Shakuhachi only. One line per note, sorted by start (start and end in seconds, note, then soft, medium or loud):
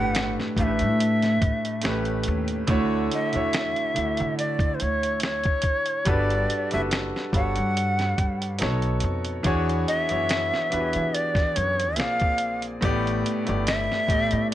0.00 0.32 F#5 loud
0.60 2.23 E5 loud
0.60 0.64 F5 medium
3.13 3.28 D#5 loud
3.28 4.35 E5 loud
4.39 4.76 D5 medium
4.75 4.83 C5 medium
4.81 5.23 C#5 medium
5.24 6.10 C#5 medium
6.08 6.72 D5 medium
6.73 6.81 E5 medium
7.35 8.57 F#5 loud
9.88 11.16 E5 loud
11.14 11.58 D5 medium
11.56 12.00 C#5 loud
11.98 12.63 F5 loud
13.67 14.48 E5 loud